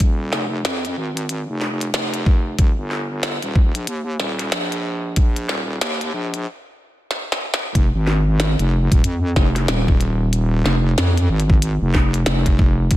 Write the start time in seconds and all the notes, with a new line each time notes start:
Already playing: D#1
0.00 kick, closed hi-hat
0.32 F1, snare
0.65 F2, snare, closed hi-hat
0.85 closed hi-hat
0.97 G#1
1.17 closed hi-hat
1.29 closed hi-hat
1.49 F1
1.61 snare
1.81 closed hi-hat
1.94 F1, snare, closed hi-hat
2.14 closed hi-hat
2.26 kick
2.58 D#1, kick, closed hi-hat
2.78 G1
2.91 snare
3.23 snare, closed hi-hat
3.42 D#1, closed hi-hat
3.56 kick
3.75 A#1, closed hi-hat
3.87 D#2, closed hi-hat
4.19 D#1, snare
4.39 snare, closed hi-hat
4.52 A#1, snare, closed hi-hat
4.72 closed hi-hat
5.16 kick, closed hi-hat
5.36 closed hi-hat
5.49 D#1, snare
5.81 D#2, snare, closed hi-hat
6.01 closed hi-hat
6.13 A#1
6.34 closed hi-hat
7.11 snare
7.32 snare
7.54 snare
7.75 F1, kick, closed hi-hat
7.94 G#1
8.07 snare
8.40 snare, closed hi-hat
8.59 F1, closed hi-hat
8.91 D#1, kick, closed hi-hat
9.04 F2, closed hi-hat
9.36 F1, kick, snare
9.56 snare, closed hi-hat
9.68 D#1, snare, closed hi-hat
9.88 kick
10.01 closed hi-hat
10.33 closed hi-hat
10.65 F1, snare
10.97 F2, snare, closed hi-hat
11.18 closed hi-hat
11.29 G#1
11.40 closed hi-hat
11.50 kick
11.62 closed hi-hat
11.82 F1
11.94 kick, snare
12.14 closed hi-hat
12.26 F1, snare, closed hi-hat
12.46 kick, closed hi-hat
12.59 kick
12.91 D#1, kick, closed hi-hat